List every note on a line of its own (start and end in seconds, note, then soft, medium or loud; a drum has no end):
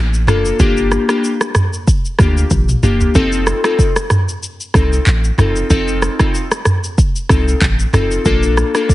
0.00 0.29 A1 medium
0.14 shaker medium
0.27 0.52 F1 medium
0.27 0.57 A#3 medium
0.27 0.57 D4 medium
0.27 0.58 F4 medium
0.27 0.58 A4 medium
0.27 cross-stick medium
0.27 mid tom medium
0.27 shaker medium
0.45 shaker medium
0.59 0.97 G1 loud
0.59 1.05 A#3 medium
0.59 1.05 D4 medium
0.59 1.05 F4 medium
0.59 1.05 G4 loud
0.59 kick loud
0.59 shaker medium
0.77 shaker medium
0.92 cross-stick medium
0.92 shaker soft
1.09 1.31 A#3 medium
1.09 1.31 D4 medium
1.09 1.31 F4 medium
1.09 1.31 G4 medium
1.09 cross-stick loud
1.09 shaker soft
1.24 shaker medium
1.41 cross-stick medium
1.41 shaker medium
1.55 cross-stick loud
1.55 mid tom medium
1.55 shaker medium
1.73 shaker medium
1.87 kick loud
1.87 shaker medium
2.05 shaker soft
2.19 2.44 D2 medium
2.19 2.43 A#3 medium
2.19 2.43 D4 medium
2.19 2.43 F4 medium
2.19 2.43 G4 medium
2.19 kick loud
2.19 cross-stick medium
2.19 shaker medium
2.38 shaker medium
2.50 2.75 A#1 medium
2.50 kick medium
2.50 high tom medium
2.50 shaker medium
2.69 mid tom medium
2.69 shaker medium
2.83 3.07 F1 medium
2.83 3.13 A#3 medium
2.83 3.13 D4 medium
2.83 3.13 F4 medium
2.83 3.13 G4 medium
2.83 mid tom medium
2.83 shaker medium
3.01 floor tom medium
3.01 shaker medium
3.15 3.53 F1 loud
3.15 3.60 C4 medium
3.15 3.60 D#4 medium
3.15 3.60 F4 medium
3.15 3.61 A4 loud
3.15 kick loud
3.15 shaker medium
3.32 shaker medium
3.47 cross-stick medium
3.47 shaker soft
3.64 3.86 C4 medium
3.64 3.86 D#4 medium
3.64 3.86 F4 medium
3.64 3.87 A4 medium
3.64 cross-stick loud
3.64 shaker medium
3.79 kick medium
3.79 shaker medium
3.96 cross-stick medium
3.96 shaker medium
4.10 cross-stick medium
4.10 mid tom medium
4.10 shaker medium
4.29 shaker medium
4.43 shaker medium
4.60 shaker soft
4.74 4.99 C2 medium
4.74 4.98 C4 medium
4.74 4.98 D#4 medium
4.74 4.98 F4 medium
4.74 4.99 A4 medium
4.74 kick loud
4.74 cross-stick medium
4.74 shaker medium
4.93 shaker medium
5.06 5.31 A1 loud
5.06 clap medium
5.06 shaker medium
5.24 shaker medium
5.38 5.63 F1 medium
5.38 5.68 C4 medium
5.38 5.68 D#4 medium
5.38 5.68 F4 medium
5.38 5.68 A4 medium
5.38 cross-stick medium
5.38 mid tom medium
5.38 shaker medium
5.56 shaker medium
5.70 6.08 F1 loud
5.70 6.16 C4 medium
5.70 6.16 D#4 medium
5.70 6.16 F4 medium
5.70 6.16 A4 loud
5.70 kick loud
5.70 shaker medium
5.88 shaker medium
6.02 cross-stick medium
6.02 shaker soft
6.19 6.41 C4 medium
6.19 6.42 D#4 medium
6.19 6.42 F4 medium
6.19 6.42 A4 medium
6.19 kick medium
6.19 cross-stick medium
6.19 shaker medium
6.35 shaker medium
6.52 cross-stick medium
6.52 shaker medium
6.65 cross-stick medium
6.65 mid tom medium
6.65 shaker medium
6.84 shaker medium
6.98 kick loud
6.98 shaker medium
7.16 shaker soft
7.29 7.54 C2 loud
7.29 7.53 C4 medium
7.29 7.54 D#4 medium
7.29 7.54 F4 medium
7.29 7.54 A4 medium
7.29 kick loud
7.29 cross-stick medium
7.29 shaker medium
7.48 shaker medium
7.61 7.86 A1 medium
7.61 kick medium
7.61 clap medium
7.61 shaker medium
7.79 shaker medium
7.93 8.18 F1 medium
7.93 8.23 C4 medium
7.93 8.23 D#4 medium
7.93 8.23 F4 medium
7.93 8.24 A4 medium
7.93 cross-stick medium
7.93 mid tom medium
7.93 shaker medium
8.11 shaker medium
8.25 8.63 A#1 loud
8.25 8.71 A#3 medium
8.25 8.71 D4 medium
8.25 8.71 F4 medium
8.25 8.71 A4 loud
8.25 kick loud
8.25 shaker medium
8.43 shaker medium
8.57 cross-stick medium
8.57 shaker soft
8.75 8.95 A#3 medium
8.75 8.95 D4 medium
8.75 8.95 F4 medium
8.75 8.95 A4 medium
8.75 cross-stick medium
8.75 shaker medium
8.89 kick loud
8.89 shaker medium